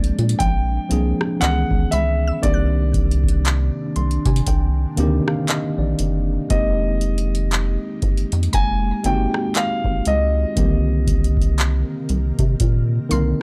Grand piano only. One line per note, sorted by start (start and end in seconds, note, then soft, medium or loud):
0.00 0.46 D5 loud
0.39 1.44 G5 loud
1.41 1.94 F#5 loud
1.91 2.39 E5 medium
2.43 5.95 D5 medium
6.50 8.50 D#5 loud
8.54 9.06 G#5 loud
9.06 9.57 G5 loud
9.57 10.08 F5 loud
10.08 13.42 D#5 loud